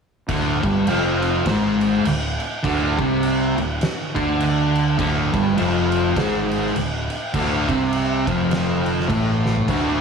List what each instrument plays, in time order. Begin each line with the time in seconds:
0.29 fingered electric bass D1, distorted electric guitar D2 D3, kick, crash
0.63 fingered electric bass G1, distorted electric guitar G2 G3, kick, crash
0.87 fingered electric bass F1, distorted electric guitar F2 F3, crash
1.22 crash
1.45 fingered electric bass G#1, distorted electric guitar G#2 G#3, kick, snare, crash
1.81 crash
2.04 fingered electric bass D1, distorted electric guitar D2, crash
2.40 crash
2.63 fingered electric bass D1, distorted electric guitar D2 D3, kick, crash
2.98 fingered electric bass C2, distorted electric guitar C3 C4, kick, crash
3.23 crash
3.57 fingered electric bass D1, distorted electric guitar D2, crash
3.81 snare, crash
4.15 fingered electric bass D2, distorted electric guitar D3 D4, kick, crash
4.40 crash
4.75 crash
4.97 fingered electric bass D1, distorted electric guitar D2 D3, kick, crash
5.33 fingered electric bass G1, distorted electric guitar G2 G3, kick, crash
5.57 fingered electric bass F1, distorted electric guitar F2 F3, crash
5.92 crash
6.16 fingered electric bass G#1, distorted electric guitar G#2 G#3, kick, snare, crash
6.51 crash
6.66 snare
6.75 fingered electric bass D1, distorted electric guitar D2, crash
7.10 crash
7.34 fingered electric bass D1, distorted electric guitar D2 D3, kick, crash
7.69 fingered electric bass C2, distorted electric guitar C3 C4, kick, crash
7.93 crash
8.27 fingered electric bass F1, distorted electric guitar F2 F3, kick, crash
8.51 snare, crash
8.86 crash
9.00 snare
9.09 fingered electric bass A1, distorted electric guitar A2 A3, kick, crash
9.46 snare
9.56 floor tom
9.68 fingered electric bass D1, distorted electric guitar D2 D3, kick, crash